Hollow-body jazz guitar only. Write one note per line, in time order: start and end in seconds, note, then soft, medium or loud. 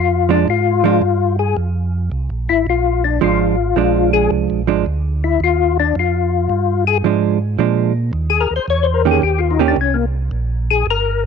0.29 0.46 F3 medium
0.29 0.46 G#3 medium
0.29 0.46 D4 medium
0.84 1.00 F3 medium
0.84 1.01 G#3 medium
0.84 1.01 D4 medium
3.21 3.54 F3 medium
3.21 3.54 G#3 medium
3.21 3.55 D4 medium
3.76 4.60 F3 soft
3.76 4.61 G#3 medium
3.76 4.61 D4 medium
4.67 4.84 F3 medium
4.67 4.84 G#3 medium
4.67 4.84 D4 medium
7.04 7.37 F3 medium
7.04 7.37 G#3 medium
7.04 7.38 D4 medium
7.59 7.92 F3 medium
7.59 7.92 G#3 medium
7.59 7.92 D4 medium
9.05 9.21 D#3 medium
9.05 9.21 A#3 soft
9.05 9.22 C#4 medium
9.05 9.22 G4 medium
9.59 9.75 D#3 medium
9.59 9.76 A#3 medium
9.59 9.76 C#4 medium
9.59 9.76 G4 medium